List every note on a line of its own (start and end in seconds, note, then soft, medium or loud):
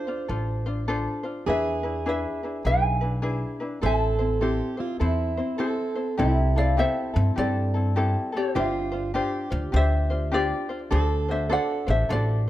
0.00 1.52 C5 medium
0.00 0.85 D5 medium
0.00 0.85 F5 loud
0.07 0.28 D4 soft
0.07 0.29 F4 medium
0.07 0.29 C5 medium
0.28 1.06 A1 medium
0.28 0.66 D4 medium
0.28 0.65 F4 medium
0.28 0.66 A4 medium
0.28 0.65 C5 medium
0.66 0.87 D4 medium
0.66 0.87 F4 medium
0.66 0.88 C5 medium
0.88 1.24 D4 medium
0.88 1.24 F4 medium
0.88 1.25 A4 medium
0.88 1.22 C5 loud
1.23 1.45 D4 medium
1.23 1.47 F4 medium
1.23 1.46 C5 medium
1.46 2.24 E2 medium
1.46 1.84 D4 medium
1.46 1.83 E4 medium
1.46 3.90 G#4 medium
1.46 1.84 G#4 medium
1.46 1.82 B4 medium
1.46 2.03 B4 medium
1.46 2.07 E5 medium
1.83 2.05 D4 soft
1.83 2.05 E4 soft
1.83 2.05 B4 medium
2.06 2.43 D4 medium
2.06 2.43 E4 medium
2.06 2.43 G#4 medium
2.06 2.42 B4 medium
2.06 2.62 B4 medium
2.06 2.62 E5 medium
2.43 2.64 D4 soft
2.43 2.65 E4 soft
2.43 2.65 B4 soft
2.65 3.42 B1 medium
2.65 3.01 D4 medium
2.65 3.01 E4 medium
2.65 3.02 G#4 medium
2.65 3.00 B4 medium
2.65 3.80 E5 medium
2.65 3.85 G#5 medium
3.01 3.21 D4 soft
3.01 3.22 E4 medium
3.01 3.22 B4 medium
3.22 3.60 D4 medium
3.22 3.60 E4 medium
3.22 3.60 G#4 medium
3.22 3.59 B4 medium
3.60 3.82 D4 soft
3.60 3.81 E4 medium
3.60 3.81 B4 medium
3.81 4.60 A1 medium
3.81 4.20 C4 medium
3.81 4.19 E4 medium
3.81 4.18 A4 medium
3.81 4.44 A4 medium
3.81 4.17 C5 medium
3.81 5.57 E5 medium
3.86 5.57 A5 medium
4.19 4.40 C4 soft
4.19 4.41 E4 medium
4.19 4.40 C5 medium
4.41 4.78 C4 medium
4.41 4.77 E4 medium
4.41 4.80 G4 medium
4.41 4.77 A4 medium
4.41 4.76 C5 medium
4.77 4.99 C4 soft
4.77 5.00 E4 medium
4.77 5.00 F4 medium
4.77 4.99 C5 medium
5.00 5.39 E2 medium
5.00 5.38 C4 medium
5.00 5.62 E4 medium
5.00 5.37 E4 medium
5.00 5.37 A4 medium
5.00 5.36 C5 medium
5.37 5.57 C4 soft
5.37 5.58 E4 medium
5.37 5.57 C5 medium
5.58 5.96 C4 medium
5.58 5.95 E4 loud
5.58 5.95 A4 medium
5.58 6.15 A4 medium
5.58 5.94 C5 loud
5.95 6.17 C4 soft
5.95 6.17 E4 soft
5.95 6.18 C5 medium
6.17 6.82 C2 loud
6.17 6.56 C4 medium
6.17 8.62 E4 medium
6.17 6.56 E4 medium
6.17 6.55 G4 medium
6.17 6.55 A4 loud
6.56 6.76 C4 soft
6.56 6.77 E4 medium
6.56 6.77 A4 medium
6.56 6.78 D5 medium
6.56 6.79 F5 loud
6.77 7.15 C4 medium
6.77 7.14 E4 medium
6.77 7.15 G4 medium
6.77 7.12 A4 medium
6.77 7.34 C5 medium
6.77 7.38 E5 medium
7.14 7.30 G2 loud
7.14 7.36 C4 soft
7.14 7.37 E4 medium
7.14 7.36 A4 medium
7.36 8.14 G2 loud
7.36 7.74 C4 medium
7.36 7.74 E4 medium
7.36 7.74 G4 medium
7.36 7.73 A4 medium
7.36 8.30 A4 medium
7.36 8.37 D5 medium
7.74 7.95 C4 soft
7.74 7.96 E4 soft
7.74 7.96 A4 medium
7.96 8.33 C4 medium
7.96 8.33 E4 medium
7.96 8.33 G4 medium
7.96 8.31 A4 medium
8.32 8.55 C4 soft
8.32 8.55 E4 soft
8.32 8.55 A4 medium
8.37 9.49 G4 medium
8.37 9.49 C5 medium
8.55 9.18 G1 loud
8.55 8.93 D4 medium
8.55 9.15 F4 medium
8.55 8.92 F4 medium
8.55 8.92 G4 medium
8.55 8.90 C5 medium
8.92 9.13 D4 soft
8.92 9.14 F4 soft
8.92 9.14 C5 medium
9.14 9.51 D4 medium
9.14 9.50 F4 medium
9.14 9.51 G4 medium
9.14 10.97 G4 medium
9.14 9.49 C5 medium
9.50 9.66 D2 loud
9.50 9.72 D4 medium
9.50 9.72 F4 medium
9.50 9.73 C5 medium
9.72 10.50 D2 loud
9.72 10.10 D4 medium
9.72 10.10 F4 medium
9.72 10.10 G4 medium
9.72 10.09 C5 medium
9.76 10.30 C5 medium
9.76 10.36 E5 loud
10.10 10.31 D4 soft
10.10 10.32 F4 medium
10.10 10.32 C5 medium
10.32 10.69 D4 medium
10.32 10.69 F4 medium
10.32 10.69 G4 medium
10.32 10.79 G4 medium
10.32 10.68 C5 medium
10.32 10.78 D5 medium
10.69 10.90 D4 soft
10.69 10.91 F4 soft
10.69 10.91 C5 medium
10.90 11.54 D2 loud
10.90 11.28 D4 loud
10.90 11.29 F#4 medium
10.90 11.28 A4 medium
10.90 11.48 A4 loud
10.90 11.27 C5 loud
11.28 11.49 D4 soft
11.28 11.49 F#4 medium
11.28 11.50 C5 medium
11.28 11.50 E5 medium
11.49 11.87 D4 medium
11.49 11.87 F#4 medium
11.49 12.50 A4 loud
11.49 11.87 A4 medium
11.49 11.85 C5 medium
11.49 11.86 D5 medium
11.49 11.90 F#5 medium
11.87 12.02 A1 loud
11.87 12.08 D4 soft
11.87 12.09 F#4 soft
11.87 12.09 C5 medium
11.87 12.11 E5 medium
12.09 12.50 A1 loud
12.09 12.47 D4 medium
12.09 12.47 F#4 medium
12.09 12.46 A4 medium
12.09 12.46 C5 medium
12.09 12.50 D5 medium
12.13 12.50 A4 medium